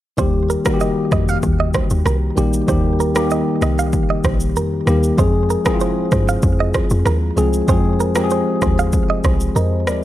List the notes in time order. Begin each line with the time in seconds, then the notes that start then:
0.17 D#2 D#3 G3 A#3 G4 C5, kick, shaker
0.50 A#4, shaker
0.64 D#3 G3 A#3 F#4 A#4, kick, cross-stick, shaker
0.74 G4
0.80 D#5, shaker
1.12 F2 D#5, kick, cross-stick, shaker
1.29 F5, shaker
1.43 D#2, kick, shaker
1.60 D#5
1.74 C5, kick, cross-stick, shaker
1.90 D#2, shaker
2.06 C2 A#4, cross-stick, shaker
2.36 A#1 D#3 G3 A#3 G4, shaker
2.53 shaker
2.67 D#2 D#3 G3 A#3 G4 C5, kick, shaker
3.00 A#4, shaker
3.14 D#3 G3 A#3 G4 A#4, cross-stick, shaker
3.30 D#5, shaker
3.62 C2 D#5, cross-stick, shaker
3.79 F5, shaker
3.93 kick, shaker
4.10 D#5
4.24 A#1 C5, kick, cross-stick, shaker
4.40 shaker
4.56 F2 A#4, shaker
4.86 D#2 D#3 G3 A#3 G4, cross-stick, shaker
5.03 shaker
5.17 F2 F3 G#3 C4 G#4 C5, kick, shaker
5.50 A#4, shaker
5.64 F3 C4 E4 G#4 A#4, kick, cross-stick, shaker
5.74 F4
5.80 C5, shaker
6.12 G2 C5, kick, cross-stick, shaker
6.29 F5, shaker
6.43 F2, kick, shaker
6.60 D#5
6.74 C5, kick, cross-stick, shaker
6.90 F2, shaker
7.06 D#2 A#4, cross-stick, shaker
7.36 C2 F3 G#3 C4 G#4, shaker
7.53 shaker
7.67 F2 F3 G#3 C4 G#4 C5, kick, shaker
8.00 A#4, shaker
8.15 F3 G#3 C4 G4 A#4, cross-stick, shaker
8.24 G#4
8.30 C5, shaker
8.62 D#2 C5, kick, cross-stick, shaker
8.79 F5, shaker
8.93 kick, shaker
9.10 D#5
9.24 C2 C5, kick, cross-stick, shaker
9.40 shaker
9.56 F2 A#4 C5 D#5, shaker
9.87 D#2 A#4 D5, cross-stick, shaker